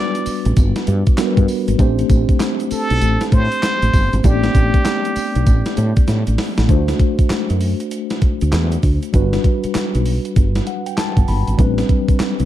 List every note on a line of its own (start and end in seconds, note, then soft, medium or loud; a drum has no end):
0.00 1.14 G3 medium
0.00 1.14 B3 medium
0.00 1.15 D4 medium
0.00 1.15 F#4 medium
0.00 1.15 B4 medium
0.00 0.57 D5 medium
0.15 closed hi-hat medium
0.15 shaker soft
0.26 muted fretless electric bass stroke soft
0.26 open hi-hat medium
0.26 tambourine medium
0.26 shaker medium
0.45 0.54 A1 medium
0.45 closed hi-hat soft
0.45 shaker medium
0.57 0.71 G1 loud
0.57 kick loud
0.57 closed hi-hat medium
0.57 tambourine medium
0.57 shaker medium
0.76 snare medium
0.76 closed hi-hat medium
0.76 shaker soft
0.87 1.02 G2 loud
0.87 closed hi-hat medium
0.87 shaker medium
1.06 kick loud
1.06 closed hi-hat medium
1.06 shaker medium
1.18 1.79 G3 medium
1.18 1.79 B3 medium
1.18 1.78 D4 medium
1.18 1.80 F#4 medium
1.18 1.27 A#4 medium
1.18 snare loud
1.18 clap medium
1.18 closed hi-hat medium
1.18 tambourine loud
1.18 shaker medium
1.26 1.83 B4 medium
1.37 1.46 G2 medium
1.37 kick medium
1.37 closed hi-hat medium
1.37 shaker medium
1.48 open hi-hat medium
1.48 tambourine medium
1.68 1.77 G#1 medium
1.68 closed hi-hat medium
1.68 shaker medium
1.78 2.02 A1 loud
1.78 4.20 A3 medium
1.78 4.20 C4 medium
1.78 4.20 D4 medium
1.78 4.21 G4 medium
1.78 4.21 C5 medium
1.78 kick loud
1.78 closed hi-hat medium
1.78 tambourine medium
1.78 shaker medium
1.99 closed hi-hat medium
1.99 shaker medium
2.10 2.24 A1 loud
2.10 kick loud
2.10 closed hi-hat medium
2.10 tambourine medium
2.10 shaker medium
2.29 kick loud
2.29 closed hi-hat medium
2.29 shaker soft
2.40 snare loud
2.40 clap medium
2.40 closed hi-hat medium
2.40 tambourine loud
2.40 shaker medium
2.60 closed hi-hat medium
2.60 shaker soft
2.71 3.35 A4 loud
2.71 muted fretless electric bass stroke soft
2.71 open hi-hat medium
2.71 tambourine medium
2.71 shaker medium
2.90 2.99 B1 medium
2.90 closed hi-hat medium
2.90 shaker soft
3.02 3.16 A1 medium
3.02 closed hi-hat medium
3.02 tambourine medium
3.02 shaker medium
3.21 snare medium
3.21 closed hi-hat medium
3.21 shaker soft
3.32 3.47 A2 loud
3.32 4.27 C5 loud
3.32 kick medium
3.32 closed hi-hat medium
3.32 shaker medium
3.52 closed hi-hat medium
3.52 shaker soft
3.63 snare loud
3.63 clap medium
3.63 closed hi-hat medium
3.63 tambourine loud
3.63 shaker medium
3.82 3.91 A1 medium
3.82 closed hi-hat medium
3.82 shaker medium
3.94 4.08 G1 medium
3.94 kick medium
3.94 open hi-hat medium
3.94 tambourine medium
4.13 4.22 G#1 medium
4.13 closed hi-hat soft
4.13 shaker medium
4.23 4.47 A1 loud
4.23 6.65 A3 medium
4.23 4.32 B3 soft
4.23 6.65 D4 medium
4.23 6.66 G4 medium
4.23 6.08 G4 loud
4.23 6.66 D5 medium
4.23 kick loud
4.23 closed hi-hat medium
4.23 tambourine medium
4.23 shaker medium
4.30 6.68 C4 medium
4.43 snare medium
4.43 closed hi-hat medium
4.43 shaker medium
4.55 4.69 A1 loud
4.55 kick medium
4.55 closed hi-hat medium
4.55 tambourine medium
4.55 shaker medium
4.74 kick loud
4.74 closed hi-hat medium
4.74 shaker soft
4.85 snare loud
4.85 clap loud
4.85 closed hi-hat medium
4.85 tambourine loud
4.85 shaker medium
5.05 closed hi-hat medium
5.05 shaker soft
5.16 muted fretless electric bass stroke medium
5.16 open hi-hat medium
5.16 tambourine medium
5.16 shaker medium
5.35 5.44 B1 medium
5.35 closed hi-hat medium
5.35 shaker soft
5.46 5.61 A1 medium
5.46 kick loud
5.46 closed hi-hat medium
5.46 tambourine medium
5.46 shaker medium
5.66 snare medium
5.66 closed hi-hat medium
5.66 shaker soft
5.77 5.92 A2 loud
5.77 closed hi-hat medium
5.77 shaker medium
5.96 kick loud
5.96 closed hi-hat medium
5.96 shaker medium
6.08 6.23 A2 loud
6.08 snare medium
6.08 closed hi-hat medium
6.08 shaker medium
6.27 6.36 A1 medium
6.27 closed hi-hat medium
6.27 shaker medium
6.38 snare loud
6.38 open hi-hat medium
6.58 6.67 A1 medium
6.58 snare loud
6.58 closed hi-hat medium
6.58 shaker medium
6.68 6.92 D2 loud
6.68 9.09 A3 medium
6.68 9.10 D4 medium
6.68 6.78 F4 medium
6.68 9.11 C5 medium
6.68 kick loud
6.68 closed hi-hat medium
6.68 shaker medium
6.76 9.13 F#4 medium
6.88 snare medium
6.88 closed hi-hat medium
6.88 shaker medium
7.00 kick medium
7.00 closed hi-hat medium
7.19 muted fretless electric bass stroke soft
7.19 kick medium
7.19 closed hi-hat medium
7.19 shaker soft
7.30 muted fretless electric bass stroke soft
7.30 snare loud
7.30 clap medium
7.30 closed hi-hat medium
7.30 shaker medium
7.50 7.73 F#2 medium
7.50 closed hi-hat medium
7.50 shaker soft
7.61 open hi-hat medium
7.61 shaker soft
7.80 closed hi-hat soft
7.80 shaker soft
7.91 closed hi-hat medium
7.91 shaker medium
8.10 snare medium
8.10 closed hi-hat medium
8.10 shaker soft
8.22 muted fretless electric bass stroke soft
8.22 kick medium
8.22 closed hi-hat medium
8.41 8.50 D2 medium
8.41 closed hi-hat soft
8.41 shaker medium
8.52 8.76 E2 medium
8.52 snare loud
8.52 clap medium
8.52 closed hi-hat medium
8.52 shaker medium
8.72 closed hi-hat medium
8.72 shaker medium
8.83 8.98 D2 medium
8.83 kick medium
8.83 open hi-hat medium
8.83 shaker medium
9.02 closed hi-hat soft
9.02 shaker medium
9.13 9.37 G1 loud
9.13 11.54 G3 medium
9.13 11.55 D4 medium
9.13 11.55 F#4 medium
9.13 11.55 B4 medium
9.13 kick loud
9.13 closed hi-hat medium
9.13 shaker medium
9.33 snare medium
9.33 closed hi-hat medium
9.33 shaker medium
9.44 kick medium
9.44 closed hi-hat medium
9.64 muted fretless electric bass stroke soft
9.64 closed hi-hat medium
9.64 shaker soft
9.75 muted fretless electric bass stroke soft
9.75 snare loud
9.75 clap medium
9.75 closed hi-hat medium
9.75 shaker medium
9.95 10.18 B1 medium
9.95 closed hi-hat medium
9.95 shaker soft
10.06 open hi-hat medium
10.06 shaker medium
10.25 closed hi-hat soft
10.25 shaker soft
10.36 10.60 G1 medium
10.36 kick loud
10.36 closed hi-hat medium
10.36 shaker medium
10.55 snare medium
10.55 closed hi-hat medium
10.55 shaker soft
10.67 10.85 F#5 medium
10.67 closed hi-hat medium
10.86 10.97 G5 medium
10.86 closed hi-hat medium
10.86 shaker medium
10.97 11.26 A5 medium
10.97 snare loud
10.97 clap medium
10.97 closed hi-hat medium
10.97 shaker medium
11.17 11.25 G1 medium
11.17 kick medium
11.17 closed hi-hat medium
11.17 shaker medium
11.28 11.43 G1 medium
11.28 11.57 B5 medium
11.28 open hi-hat medium
11.28 shaker medium
11.47 11.56 G#1 medium
11.47 closed hi-hat soft
11.47 shaker medium
11.58 11.82 A1 loud
11.58 12.45 G3 medium
11.58 12.45 C4 medium
11.58 12.45 D4 medium
11.58 12.45 B4 medium
11.58 kick loud
11.58 closed hi-hat medium
11.58 shaker medium
11.78 snare medium
11.78 closed hi-hat soft
11.78 shaker soft
11.89 kick medium
11.89 closed hi-hat medium
12.08 muted fretless electric bass stroke soft
12.08 kick loud
12.08 closed hi-hat medium
12.08 shaker soft
12.20 muted fretless electric bass stroke soft
12.20 snare loud
12.20 clap loud
12.20 closed hi-hat medium
12.20 shaker medium
12.40 12.45 C2 medium
12.40 closed hi-hat medium
12.40 shaker soft